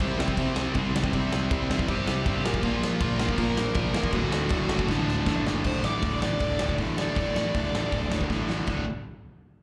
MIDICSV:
0, 0, Header, 1, 5, 480
1, 0, Start_track
1, 0, Tempo, 377834
1, 1438, Time_signature, 4, 2, 24, 8
1, 12233, End_track
2, 0, Start_track
2, 0, Title_t, "Lead electric guitar"
2, 0, Program_c, 0, 29
2, 0, Note_on_c, 0, 60, 97
2, 2412, Note_on_c, 0, 67, 104
2, 2478, Note_off_c, 0, 60, 0
2, 3307, Note_off_c, 0, 67, 0
2, 3353, Note_on_c, 0, 65, 101
2, 4307, Note_on_c, 0, 70, 110
2, 4335, Note_off_c, 0, 65, 0
2, 5248, Note_off_c, 0, 70, 0
2, 5253, Note_on_c, 0, 66, 99
2, 6228, Note_on_c, 0, 62, 78
2, 6243, Note_off_c, 0, 66, 0
2, 6893, Note_off_c, 0, 62, 0
2, 7198, Note_on_c, 0, 72, 88
2, 7426, Note_off_c, 0, 72, 0
2, 7426, Note_on_c, 0, 74, 107
2, 7884, Note_off_c, 0, 74, 0
2, 7899, Note_on_c, 0, 74, 105
2, 8570, Note_off_c, 0, 74, 0
2, 8908, Note_on_c, 0, 74, 80
2, 10522, Note_off_c, 0, 74, 0
2, 12233, End_track
3, 0, Start_track
3, 0, Title_t, "Overdriven electric guitar"
3, 0, Program_c, 1, 29
3, 0, Note_on_c, 1, 48, 91
3, 11, Note_on_c, 1, 60, 93
3, 12, Note_on_c, 1, 55, 90
3, 221, Note_off_c, 1, 55, 0
3, 223, Note_off_c, 1, 48, 0
3, 234, Note_off_c, 1, 60, 0
3, 237, Note_on_c, 1, 55, 91
3, 239, Note_on_c, 1, 48, 91
3, 249, Note_on_c, 1, 60, 84
3, 470, Note_off_c, 1, 48, 0
3, 471, Note_off_c, 1, 60, 0
3, 472, Note_off_c, 1, 55, 0
3, 485, Note_on_c, 1, 48, 102
3, 486, Note_on_c, 1, 60, 113
3, 487, Note_on_c, 1, 55, 93
3, 938, Note_off_c, 1, 48, 0
3, 949, Note_off_c, 1, 60, 0
3, 950, Note_off_c, 1, 55, 0
3, 954, Note_on_c, 1, 48, 89
3, 964, Note_on_c, 1, 60, 95
3, 966, Note_on_c, 1, 55, 92
3, 1185, Note_off_c, 1, 48, 0
3, 1187, Note_off_c, 1, 55, 0
3, 1195, Note_off_c, 1, 60, 0
3, 1200, Note_on_c, 1, 48, 92
3, 1202, Note_on_c, 1, 55, 87
3, 1211, Note_on_c, 1, 60, 93
3, 1409, Note_off_c, 1, 48, 0
3, 1416, Note_off_c, 1, 55, 0
3, 1418, Note_off_c, 1, 60, 0
3, 1424, Note_on_c, 1, 48, 97
3, 1432, Note_on_c, 1, 55, 90
3, 1433, Note_on_c, 1, 60, 107
3, 1909, Note_off_c, 1, 48, 0
3, 1919, Note_off_c, 1, 55, 0
3, 1921, Note_off_c, 1, 60, 0
3, 1924, Note_on_c, 1, 48, 84
3, 1935, Note_on_c, 1, 55, 93
3, 1937, Note_on_c, 1, 60, 100
3, 2142, Note_off_c, 1, 48, 0
3, 2144, Note_off_c, 1, 55, 0
3, 2151, Note_off_c, 1, 60, 0
3, 2157, Note_on_c, 1, 48, 82
3, 2159, Note_on_c, 1, 55, 82
3, 2166, Note_on_c, 1, 60, 91
3, 2369, Note_off_c, 1, 48, 0
3, 2375, Note_off_c, 1, 55, 0
3, 2381, Note_off_c, 1, 60, 0
3, 2384, Note_on_c, 1, 48, 115
3, 2390, Note_on_c, 1, 55, 116
3, 2396, Note_on_c, 1, 60, 105
3, 2857, Note_off_c, 1, 48, 0
3, 2862, Note_off_c, 1, 55, 0
3, 2865, Note_off_c, 1, 60, 0
3, 2873, Note_on_c, 1, 48, 90
3, 2877, Note_on_c, 1, 55, 96
3, 2881, Note_on_c, 1, 60, 106
3, 3096, Note_off_c, 1, 48, 0
3, 3099, Note_off_c, 1, 55, 0
3, 3100, Note_off_c, 1, 60, 0
3, 3109, Note_on_c, 1, 46, 104
3, 3111, Note_on_c, 1, 53, 117
3, 3112, Note_on_c, 1, 58, 118
3, 3335, Note_off_c, 1, 53, 0
3, 3339, Note_off_c, 1, 46, 0
3, 3343, Note_off_c, 1, 58, 0
3, 3350, Note_on_c, 1, 53, 108
3, 3354, Note_on_c, 1, 46, 103
3, 3359, Note_on_c, 1, 58, 105
3, 3813, Note_off_c, 1, 53, 0
3, 3817, Note_off_c, 1, 46, 0
3, 3822, Note_off_c, 1, 58, 0
3, 3828, Note_on_c, 1, 53, 99
3, 3832, Note_on_c, 1, 46, 82
3, 3837, Note_on_c, 1, 58, 105
3, 4049, Note_off_c, 1, 46, 0
3, 4058, Note_off_c, 1, 58, 0
3, 4059, Note_off_c, 1, 53, 0
3, 4064, Note_on_c, 1, 46, 90
3, 4073, Note_on_c, 1, 58, 100
3, 4074, Note_on_c, 1, 53, 80
3, 4283, Note_off_c, 1, 46, 0
3, 4285, Note_off_c, 1, 53, 0
3, 4291, Note_off_c, 1, 58, 0
3, 4298, Note_on_c, 1, 46, 105
3, 4301, Note_on_c, 1, 53, 105
3, 4307, Note_on_c, 1, 58, 118
3, 4764, Note_off_c, 1, 46, 0
3, 4770, Note_off_c, 1, 53, 0
3, 4772, Note_off_c, 1, 58, 0
3, 4780, Note_on_c, 1, 46, 96
3, 4785, Note_on_c, 1, 53, 101
3, 4787, Note_on_c, 1, 58, 95
3, 5002, Note_off_c, 1, 46, 0
3, 5010, Note_off_c, 1, 53, 0
3, 5014, Note_off_c, 1, 58, 0
3, 5017, Note_on_c, 1, 46, 87
3, 5025, Note_on_c, 1, 53, 101
3, 5029, Note_on_c, 1, 58, 108
3, 5244, Note_off_c, 1, 46, 0
3, 5248, Note_off_c, 1, 53, 0
3, 5250, Note_off_c, 1, 58, 0
3, 5269, Note_on_c, 1, 38, 88
3, 5276, Note_on_c, 1, 50, 110
3, 5279, Note_on_c, 1, 45, 107
3, 5715, Note_off_c, 1, 38, 0
3, 5718, Note_off_c, 1, 50, 0
3, 5724, Note_off_c, 1, 45, 0
3, 5731, Note_on_c, 1, 38, 85
3, 5733, Note_on_c, 1, 50, 93
3, 5739, Note_on_c, 1, 45, 86
3, 5945, Note_off_c, 1, 38, 0
3, 5958, Note_off_c, 1, 45, 0
3, 5960, Note_on_c, 1, 38, 76
3, 5963, Note_off_c, 1, 50, 0
3, 5973, Note_on_c, 1, 45, 83
3, 5978, Note_on_c, 1, 50, 82
3, 6201, Note_off_c, 1, 38, 0
3, 6206, Note_off_c, 1, 45, 0
3, 6210, Note_off_c, 1, 50, 0
3, 6217, Note_on_c, 1, 38, 97
3, 6222, Note_on_c, 1, 45, 100
3, 6225, Note_on_c, 1, 50, 116
3, 6682, Note_off_c, 1, 38, 0
3, 6683, Note_off_c, 1, 45, 0
3, 6687, Note_off_c, 1, 50, 0
3, 6697, Note_on_c, 1, 38, 83
3, 6698, Note_on_c, 1, 45, 104
3, 6702, Note_on_c, 1, 50, 99
3, 6931, Note_off_c, 1, 38, 0
3, 6941, Note_off_c, 1, 45, 0
3, 6942, Note_off_c, 1, 50, 0
3, 6946, Note_on_c, 1, 38, 98
3, 6956, Note_on_c, 1, 45, 89
3, 6957, Note_on_c, 1, 50, 98
3, 7151, Note_off_c, 1, 38, 0
3, 7160, Note_off_c, 1, 50, 0
3, 7166, Note_off_c, 1, 45, 0
3, 7166, Note_on_c, 1, 38, 88
3, 7176, Note_on_c, 1, 50, 96
3, 7182, Note_on_c, 1, 45, 101
3, 7393, Note_off_c, 1, 38, 0
3, 7393, Note_off_c, 1, 45, 0
3, 7398, Note_on_c, 1, 38, 72
3, 7408, Note_off_c, 1, 50, 0
3, 7408, Note_on_c, 1, 45, 76
3, 7414, Note_on_c, 1, 50, 73
3, 7640, Note_off_c, 1, 45, 0
3, 7645, Note_off_c, 1, 38, 0
3, 7650, Note_on_c, 1, 38, 80
3, 7655, Note_on_c, 1, 45, 85
3, 7658, Note_off_c, 1, 50, 0
3, 7663, Note_on_c, 1, 50, 90
3, 7906, Note_off_c, 1, 45, 0
3, 7909, Note_off_c, 1, 38, 0
3, 7914, Note_on_c, 1, 38, 67
3, 7921, Note_off_c, 1, 50, 0
3, 7921, Note_on_c, 1, 45, 71
3, 7926, Note_on_c, 1, 50, 82
3, 8148, Note_off_c, 1, 45, 0
3, 8154, Note_off_c, 1, 38, 0
3, 8158, Note_off_c, 1, 50, 0
3, 8159, Note_on_c, 1, 38, 90
3, 8163, Note_on_c, 1, 45, 94
3, 8163, Note_on_c, 1, 50, 100
3, 8381, Note_off_c, 1, 45, 0
3, 8385, Note_off_c, 1, 38, 0
3, 8390, Note_on_c, 1, 38, 82
3, 8395, Note_off_c, 1, 50, 0
3, 8396, Note_on_c, 1, 45, 87
3, 8400, Note_on_c, 1, 50, 99
3, 8628, Note_off_c, 1, 38, 0
3, 8631, Note_off_c, 1, 45, 0
3, 8633, Note_on_c, 1, 38, 82
3, 8637, Note_off_c, 1, 50, 0
3, 8643, Note_on_c, 1, 50, 93
3, 8646, Note_on_c, 1, 45, 91
3, 8859, Note_off_c, 1, 38, 0
3, 8862, Note_off_c, 1, 45, 0
3, 8864, Note_on_c, 1, 38, 72
3, 8875, Note_off_c, 1, 50, 0
3, 8877, Note_on_c, 1, 45, 84
3, 8880, Note_on_c, 1, 50, 83
3, 9104, Note_off_c, 1, 38, 0
3, 9117, Note_off_c, 1, 45, 0
3, 9119, Note_off_c, 1, 50, 0
3, 9119, Note_on_c, 1, 38, 83
3, 9132, Note_on_c, 1, 45, 88
3, 9135, Note_on_c, 1, 50, 96
3, 9348, Note_off_c, 1, 38, 0
3, 9357, Note_off_c, 1, 45, 0
3, 9363, Note_on_c, 1, 38, 74
3, 9368, Note_off_c, 1, 50, 0
3, 9373, Note_on_c, 1, 45, 76
3, 9383, Note_on_c, 1, 50, 84
3, 9593, Note_off_c, 1, 45, 0
3, 9594, Note_off_c, 1, 38, 0
3, 9595, Note_off_c, 1, 50, 0
3, 9608, Note_on_c, 1, 45, 77
3, 9610, Note_on_c, 1, 38, 71
3, 9610, Note_on_c, 1, 50, 83
3, 9830, Note_off_c, 1, 38, 0
3, 9837, Note_off_c, 1, 45, 0
3, 9838, Note_off_c, 1, 50, 0
3, 9845, Note_on_c, 1, 38, 64
3, 9852, Note_on_c, 1, 45, 79
3, 9853, Note_on_c, 1, 50, 81
3, 10058, Note_off_c, 1, 38, 0
3, 10073, Note_on_c, 1, 38, 86
3, 10074, Note_off_c, 1, 45, 0
3, 10074, Note_off_c, 1, 50, 0
3, 10089, Note_on_c, 1, 45, 95
3, 10089, Note_on_c, 1, 50, 96
3, 10282, Note_off_c, 1, 38, 0
3, 10293, Note_off_c, 1, 45, 0
3, 10296, Note_off_c, 1, 50, 0
3, 10297, Note_on_c, 1, 38, 72
3, 10308, Note_on_c, 1, 45, 82
3, 10312, Note_on_c, 1, 50, 83
3, 10543, Note_off_c, 1, 50, 0
3, 10544, Note_off_c, 1, 45, 0
3, 10545, Note_off_c, 1, 38, 0
3, 10558, Note_on_c, 1, 50, 79
3, 10560, Note_on_c, 1, 38, 78
3, 10560, Note_on_c, 1, 45, 76
3, 10771, Note_off_c, 1, 38, 0
3, 10776, Note_off_c, 1, 45, 0
3, 10783, Note_off_c, 1, 50, 0
3, 10786, Note_on_c, 1, 38, 73
3, 10791, Note_on_c, 1, 45, 70
3, 10798, Note_on_c, 1, 50, 76
3, 11016, Note_off_c, 1, 38, 0
3, 11018, Note_off_c, 1, 45, 0
3, 11022, Note_off_c, 1, 50, 0
3, 11035, Note_on_c, 1, 38, 81
3, 11050, Note_on_c, 1, 50, 84
3, 11051, Note_on_c, 1, 45, 75
3, 11227, Note_off_c, 1, 38, 0
3, 11235, Note_off_c, 1, 45, 0
3, 11235, Note_off_c, 1, 50, 0
3, 12233, End_track
4, 0, Start_track
4, 0, Title_t, "Picked electric bass"
4, 0, Program_c, 2, 34
4, 0, Note_on_c, 2, 36, 104
4, 195, Note_off_c, 2, 36, 0
4, 225, Note_on_c, 2, 36, 110
4, 427, Note_off_c, 2, 36, 0
4, 471, Note_on_c, 2, 48, 91
4, 670, Note_off_c, 2, 48, 0
4, 713, Note_on_c, 2, 36, 89
4, 911, Note_off_c, 2, 36, 0
4, 954, Note_on_c, 2, 36, 104
4, 1151, Note_off_c, 2, 36, 0
4, 1210, Note_on_c, 2, 36, 90
4, 1400, Note_off_c, 2, 36, 0
4, 1443, Note_on_c, 2, 36, 111
4, 1636, Note_off_c, 2, 36, 0
4, 1706, Note_on_c, 2, 36, 93
4, 1889, Note_off_c, 2, 36, 0
4, 1911, Note_on_c, 2, 36, 99
4, 2107, Note_off_c, 2, 36, 0
4, 2163, Note_on_c, 2, 40, 110
4, 2354, Note_off_c, 2, 40, 0
4, 2395, Note_on_c, 2, 31, 98
4, 2589, Note_off_c, 2, 31, 0
4, 2640, Note_on_c, 2, 36, 98
4, 2831, Note_off_c, 2, 36, 0
4, 2869, Note_on_c, 2, 43, 98
4, 3064, Note_off_c, 2, 43, 0
4, 3103, Note_on_c, 2, 34, 97
4, 3300, Note_off_c, 2, 34, 0
4, 3340, Note_on_c, 2, 34, 108
4, 3732, Note_off_c, 2, 34, 0
4, 3824, Note_on_c, 2, 34, 108
4, 4020, Note_off_c, 2, 34, 0
4, 4045, Note_on_c, 2, 34, 108
4, 4248, Note_off_c, 2, 34, 0
4, 4289, Note_on_c, 2, 46, 96
4, 4490, Note_off_c, 2, 46, 0
4, 4509, Note_on_c, 2, 34, 102
4, 4718, Note_off_c, 2, 34, 0
4, 4765, Note_on_c, 2, 34, 91
4, 4967, Note_off_c, 2, 34, 0
4, 4990, Note_on_c, 2, 40, 99
4, 5197, Note_off_c, 2, 40, 0
4, 5253, Note_on_c, 2, 26, 112
4, 5451, Note_off_c, 2, 26, 0
4, 5484, Note_on_c, 2, 26, 93
4, 5686, Note_off_c, 2, 26, 0
4, 5722, Note_on_c, 2, 26, 90
4, 5924, Note_off_c, 2, 26, 0
4, 5990, Note_on_c, 2, 30, 103
4, 6181, Note_off_c, 2, 30, 0
4, 6208, Note_on_c, 2, 33, 94
4, 6407, Note_off_c, 2, 33, 0
4, 6448, Note_on_c, 2, 26, 92
4, 6647, Note_off_c, 2, 26, 0
4, 6691, Note_on_c, 2, 33, 104
4, 6889, Note_off_c, 2, 33, 0
4, 6909, Note_on_c, 2, 30, 97
4, 7116, Note_off_c, 2, 30, 0
4, 7175, Note_on_c, 2, 26, 91
4, 7353, Note_off_c, 2, 26, 0
4, 7390, Note_on_c, 2, 33, 78
4, 7578, Note_off_c, 2, 33, 0
4, 7653, Note_on_c, 2, 26, 89
4, 7833, Note_off_c, 2, 26, 0
4, 7893, Note_on_c, 2, 33, 95
4, 8073, Note_off_c, 2, 33, 0
4, 8142, Note_on_c, 2, 26, 89
4, 8319, Note_off_c, 2, 26, 0
4, 8389, Note_on_c, 2, 26, 78
4, 8564, Note_off_c, 2, 26, 0
4, 8620, Note_on_c, 2, 33, 90
4, 8977, Note_off_c, 2, 33, 0
4, 9103, Note_on_c, 2, 26, 90
4, 9281, Note_off_c, 2, 26, 0
4, 9356, Note_on_c, 2, 33, 77
4, 9530, Note_off_c, 2, 33, 0
4, 9590, Note_on_c, 2, 26, 89
4, 9766, Note_off_c, 2, 26, 0
4, 9820, Note_on_c, 2, 33, 94
4, 10001, Note_off_c, 2, 33, 0
4, 10059, Note_on_c, 2, 26, 80
4, 10240, Note_off_c, 2, 26, 0
4, 10307, Note_on_c, 2, 26, 79
4, 10486, Note_off_c, 2, 26, 0
4, 10553, Note_on_c, 2, 33, 81
4, 10910, Note_off_c, 2, 33, 0
4, 11030, Note_on_c, 2, 26, 90
4, 11256, Note_off_c, 2, 26, 0
4, 12233, End_track
5, 0, Start_track
5, 0, Title_t, "Drums"
5, 1, Note_on_c, 9, 49, 81
5, 128, Note_off_c, 9, 49, 0
5, 255, Note_on_c, 9, 38, 127
5, 354, Note_on_c, 9, 36, 97
5, 382, Note_off_c, 9, 38, 0
5, 473, Note_off_c, 9, 36, 0
5, 473, Note_on_c, 9, 36, 99
5, 474, Note_on_c, 9, 49, 79
5, 600, Note_off_c, 9, 36, 0
5, 601, Note_off_c, 9, 49, 0
5, 712, Note_on_c, 9, 38, 127
5, 839, Note_off_c, 9, 38, 0
5, 945, Note_on_c, 9, 49, 67
5, 955, Note_on_c, 9, 36, 110
5, 1072, Note_off_c, 9, 49, 0
5, 1082, Note_off_c, 9, 36, 0
5, 1217, Note_on_c, 9, 38, 127
5, 1317, Note_on_c, 9, 36, 102
5, 1344, Note_off_c, 9, 38, 0
5, 1439, Note_off_c, 9, 36, 0
5, 1439, Note_on_c, 9, 36, 106
5, 1444, Note_on_c, 9, 49, 71
5, 1566, Note_off_c, 9, 36, 0
5, 1571, Note_off_c, 9, 49, 0
5, 1684, Note_on_c, 9, 38, 119
5, 1811, Note_off_c, 9, 38, 0
5, 1919, Note_on_c, 9, 36, 127
5, 1922, Note_on_c, 9, 49, 68
5, 2046, Note_off_c, 9, 36, 0
5, 2050, Note_off_c, 9, 49, 0
5, 2170, Note_on_c, 9, 38, 118
5, 2277, Note_on_c, 9, 36, 101
5, 2297, Note_off_c, 9, 38, 0
5, 2392, Note_on_c, 9, 49, 67
5, 2394, Note_off_c, 9, 36, 0
5, 2394, Note_on_c, 9, 36, 108
5, 2519, Note_off_c, 9, 49, 0
5, 2521, Note_off_c, 9, 36, 0
5, 2636, Note_on_c, 9, 38, 120
5, 2763, Note_off_c, 9, 38, 0
5, 2871, Note_on_c, 9, 36, 114
5, 2871, Note_on_c, 9, 49, 67
5, 2998, Note_off_c, 9, 36, 0
5, 2998, Note_off_c, 9, 49, 0
5, 3120, Note_on_c, 9, 38, 127
5, 3226, Note_on_c, 9, 36, 93
5, 3247, Note_off_c, 9, 38, 0
5, 3338, Note_on_c, 9, 49, 76
5, 3342, Note_off_c, 9, 36, 0
5, 3342, Note_on_c, 9, 36, 107
5, 3465, Note_off_c, 9, 49, 0
5, 3469, Note_off_c, 9, 36, 0
5, 3601, Note_on_c, 9, 38, 113
5, 3728, Note_off_c, 9, 38, 0
5, 3818, Note_on_c, 9, 49, 79
5, 3819, Note_on_c, 9, 36, 127
5, 3945, Note_off_c, 9, 49, 0
5, 3946, Note_off_c, 9, 36, 0
5, 4059, Note_on_c, 9, 38, 119
5, 4175, Note_on_c, 9, 36, 98
5, 4186, Note_off_c, 9, 38, 0
5, 4293, Note_off_c, 9, 36, 0
5, 4293, Note_on_c, 9, 36, 112
5, 4293, Note_on_c, 9, 49, 76
5, 4420, Note_off_c, 9, 36, 0
5, 4420, Note_off_c, 9, 49, 0
5, 4541, Note_on_c, 9, 38, 127
5, 4668, Note_off_c, 9, 38, 0
5, 4757, Note_on_c, 9, 49, 67
5, 4767, Note_on_c, 9, 36, 125
5, 4884, Note_off_c, 9, 49, 0
5, 4894, Note_off_c, 9, 36, 0
5, 5010, Note_on_c, 9, 38, 127
5, 5126, Note_on_c, 9, 36, 97
5, 5137, Note_off_c, 9, 38, 0
5, 5242, Note_on_c, 9, 49, 72
5, 5244, Note_off_c, 9, 36, 0
5, 5244, Note_on_c, 9, 36, 109
5, 5369, Note_off_c, 9, 49, 0
5, 5371, Note_off_c, 9, 36, 0
5, 5494, Note_on_c, 9, 38, 124
5, 5621, Note_off_c, 9, 38, 0
5, 5705, Note_on_c, 9, 49, 72
5, 5723, Note_on_c, 9, 36, 124
5, 5832, Note_off_c, 9, 49, 0
5, 5850, Note_off_c, 9, 36, 0
5, 5963, Note_on_c, 9, 38, 122
5, 6085, Note_on_c, 9, 36, 99
5, 6090, Note_off_c, 9, 38, 0
5, 6206, Note_off_c, 9, 36, 0
5, 6206, Note_on_c, 9, 36, 103
5, 6219, Note_on_c, 9, 38, 76
5, 6333, Note_off_c, 9, 36, 0
5, 6346, Note_off_c, 9, 38, 0
5, 6457, Note_on_c, 9, 38, 76
5, 6584, Note_off_c, 9, 38, 0
5, 6688, Note_on_c, 9, 36, 112
5, 6693, Note_on_c, 9, 38, 102
5, 6815, Note_off_c, 9, 36, 0
5, 6821, Note_off_c, 9, 38, 0
5, 6944, Note_on_c, 9, 38, 115
5, 7071, Note_off_c, 9, 38, 0
5, 7167, Note_on_c, 9, 57, 103
5, 7175, Note_on_c, 9, 36, 103
5, 7294, Note_off_c, 9, 57, 0
5, 7302, Note_off_c, 9, 36, 0
5, 7419, Note_on_c, 9, 38, 104
5, 7546, Note_off_c, 9, 38, 0
5, 7648, Note_on_c, 9, 46, 57
5, 7656, Note_on_c, 9, 36, 107
5, 7775, Note_off_c, 9, 46, 0
5, 7783, Note_off_c, 9, 36, 0
5, 7903, Note_on_c, 9, 38, 110
5, 8030, Note_off_c, 9, 38, 0
5, 8119, Note_on_c, 9, 46, 55
5, 8137, Note_on_c, 9, 36, 113
5, 8246, Note_off_c, 9, 46, 0
5, 8264, Note_off_c, 9, 36, 0
5, 8375, Note_on_c, 9, 38, 121
5, 8500, Note_on_c, 9, 36, 81
5, 8502, Note_off_c, 9, 38, 0
5, 8610, Note_on_c, 9, 46, 47
5, 8619, Note_off_c, 9, 36, 0
5, 8619, Note_on_c, 9, 36, 90
5, 8737, Note_off_c, 9, 46, 0
5, 8746, Note_off_c, 9, 36, 0
5, 8868, Note_on_c, 9, 38, 113
5, 8995, Note_off_c, 9, 38, 0
5, 9083, Note_on_c, 9, 46, 47
5, 9101, Note_on_c, 9, 36, 107
5, 9210, Note_off_c, 9, 46, 0
5, 9228, Note_off_c, 9, 36, 0
5, 9353, Note_on_c, 9, 38, 101
5, 9480, Note_off_c, 9, 38, 0
5, 9581, Note_on_c, 9, 46, 47
5, 9588, Note_on_c, 9, 36, 107
5, 9708, Note_off_c, 9, 46, 0
5, 9715, Note_off_c, 9, 36, 0
5, 9844, Note_on_c, 9, 38, 104
5, 9971, Note_off_c, 9, 38, 0
5, 10059, Note_on_c, 9, 46, 51
5, 10067, Note_on_c, 9, 36, 100
5, 10186, Note_off_c, 9, 46, 0
5, 10194, Note_off_c, 9, 36, 0
5, 10310, Note_on_c, 9, 38, 112
5, 10427, Note_on_c, 9, 36, 78
5, 10437, Note_off_c, 9, 38, 0
5, 10543, Note_off_c, 9, 36, 0
5, 10543, Note_on_c, 9, 36, 79
5, 10554, Note_on_c, 9, 38, 52
5, 10670, Note_off_c, 9, 36, 0
5, 10681, Note_off_c, 9, 38, 0
5, 10795, Note_on_c, 9, 38, 80
5, 10923, Note_off_c, 9, 38, 0
5, 11009, Note_on_c, 9, 52, 77
5, 11022, Note_on_c, 9, 36, 97
5, 11136, Note_off_c, 9, 52, 0
5, 11149, Note_off_c, 9, 36, 0
5, 12233, End_track
0, 0, End_of_file